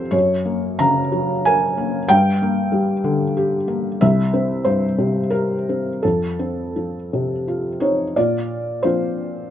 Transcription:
felt piano
Already playing: F2 C3 F3 C4 F4 A4 C5
0.11 F#2 C#5
0.45 A#3
0.79 C#3 A#5
1.12 F#3
1.45 A#4 G#5
1.77 A#3
2.08 G2 G5
2.42 A#3
2.72 G3
3.04 D3
3.37 G4
3.68 A#3
4.01 C2 E5
4.33 C4
4.65 G2 C5
4.98 C3
5.30 G4 A#4
5.69 C4
6.03 F2 A4
6.39 C4
6.76 F3
7.13 C3
7.48 F4
7.80 C4 D#4 C#5
8.16 A#2 F4 D5
8.83 F3 A#3 C4 F4 C5

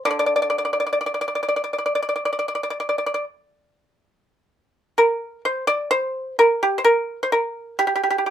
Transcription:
pipa
0.05 D3 D5
0.11 D5
0.19 D5
0.26 D5
0.36 D5
0.42 D5
0.50 D5
0.58 D5
0.65 D5
0.73 D5
0.80 D5
0.87 D5
0.93 D5
1.01 D5
1.06 D5
1.14 D5
1.21 D5
1.28 D5
1.35 D5
1.43 D5
1.49 D5
1.56 D5
1.64 D5
1.73 D5
1.78 D5
1.86 D5
1.95 D5
2.02 D5
2.09 D5
2.16 D5
2.25 D5
2.33 D5
2.39 D5
2.48 D5
2.55 D5
2.63 D5
2.70 D5
2.80 D5
2.89 D5
2.98 D5
3.06 D5
3.14 D5
4.98 A#4
5.45 C5
5.67 D5
5.91 C5
6.39 A#4
6.63 G4
6.78 C5
6.84 A#4
7.23 C5
7.32 A#4
7.79 G4
7.87 G4
7.96 G4
8.03 G4
8.10 G4
8.18 G4
8.26 G4

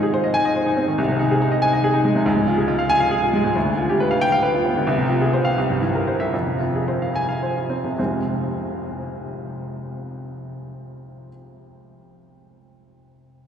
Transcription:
grand piano
Already playing: G#2 D#3 D#4
0.03 G#4
0.14 C5
0.24 D#5
0.34 G#5
0.45 D#5
0.56 C5
0.66 D#4
0.77 C4
0.88 D#3
0.98 C2
1.08 C3
1.19 D#4
1.31 G#4
1.42 D#4
1.52 D#5
1.62 G#5
1.73 D#5
1.84 G#4
1.94 D#4
2.05 G#3
2.15 C3
2.26 C#2
2.37 G#2
2.48 F4
2.57 G#4
2.68 F4
2.79 F5
2.90 G#5
3.00 F5
3.11 G#4
3.22 F4
3.33 G#3
3.44 G#2
3.55 D2
3.66 D3
3.78 F4
3.90 G4
4.00 B4
4.11 F5
4.21 G5
4.32 F5
4.43 B4
4.54 F4
4.65 B3
4.76 D3
4.87 C2
4.98 C3
5.09 F4
5.21 G#4
5.33 C5
5.45 F5
5.58 C2
5.70 G2
5.81 E4
5.95 A#4
6.08 C5
6.20 E5
6.33 F2
6.46 C3
6.60 F4
6.75 G#4
6.88 C5
7.02 F5
7.15 G#5
7.29 F5
7.43 C5
7.56 F4
7.70 C4
7.84 C3
7.98 F1 C2 F3 G#3 C4 F4

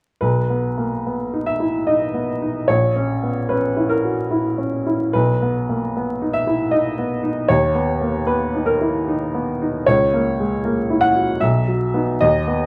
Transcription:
upright piano
0.21 B1 B4
0.50 B3
0.78 A#3
1.07 B3
1.33 D#4
1.46 E5
1.60 E4
1.87 D#4 D#5
2.14 B3
2.42 D#4
2.68 A#1 C#5
2.96 C#4
3.23 B3
3.49 C#4 B4
3.77 E4
3.89 A#4
4.04 F#4
4.31 E4
4.58 C#4
4.87 E4
5.13 B1 B4
5.42 B3
5.69 A#3
5.96 B3
6.22 D#4
6.33 E5
6.47 E4
6.71 D#4 D#5
6.98 B3
7.23 D#4
7.48 D#2 C#5
7.75 B3
8.01 A#3
8.27 B3 B4
8.54 D#4
8.66 A#4
8.81 E4
9.08 D#4
9.34 B3
9.61 D#4
9.86 C#2 C#5
10.14 A#3
10.40 G#3
10.65 A#3
10.90 E4
11.01 F#5
11.16 F#4
11.40 B1 E5
11.68 F#3
11.94 B3 D#4
12.21 D#2 D#5
12.47 B3

